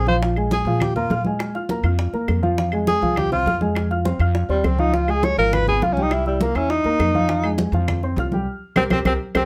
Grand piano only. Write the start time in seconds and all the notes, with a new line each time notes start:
0.07 F3 F4 F5
0.22 F3 F4 F5
0.37 G#3 G#4 G#5
0.67 F3 F4 F5
0.96 A#3 A#4 A#5
1.10 F4 F5 F6
1.26 G#3 G#4 G#5
1.54 F4 F5 F6
1.70 A#3 A#4 A#5
1.84 F4 F5 F6
2.14 A#3 A#4 A#5
2.42 F3 F4 F5
2.58 F3 F4 F5
2.73 G#3 G#4 G#5
3.02 F3 F4 F5
3.32 C4 C5 C6
3.46 F4 F5 F6
3.61 G#3 G#4 G#5
3.91 F4 F5 F6
4.05 C4 C5 C6
4.20 F4 F5 F6
4.49 C4 C5 C6
4.79 F3 F4 F5
4.94 F3 F4 F5
5.08 G#3 G#4 G#5
5.38 F3 F4 F5
5.68 B3 B4 B5
5.82 F4 F5 F6
5.97 G3 G4 G5
6.26 E4 E5 E6
6.42 A#3 A#4 A#5
6.56 E4 E5 E6
6.85 A#3 A#4 A#5
7.14 F3 F4 F5
7.30 F3 F4 F5
7.44 G#3 G#4 G#5
7.74 F3 F4 F5
8.03 C4 C5 C6
8.18 F4 F5 F6
8.33 G3 G4 G5
8.77 G4 A#4 C5
8.91 G4 A#4 C5
9.06 G4 A#4 C5
9.35 G4 A#4 C5